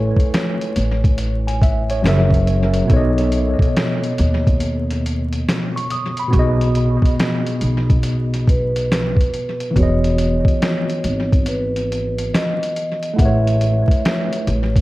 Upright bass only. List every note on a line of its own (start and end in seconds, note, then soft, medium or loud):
0.00 0.10 A1 loud
0.76 2.01 A1 medium
2.04 2.81 F#1 loud
2.90 3.53 B1 loud
4.19 5.44 D#2 medium
6.33 6.96 B1 loud
7.62 9.14 B1 medium
9.76 10.39 E1 loud
11.04 12.29 G#1 medium
13.19 13.82 A1 loud
14.47 14.81 A1 medium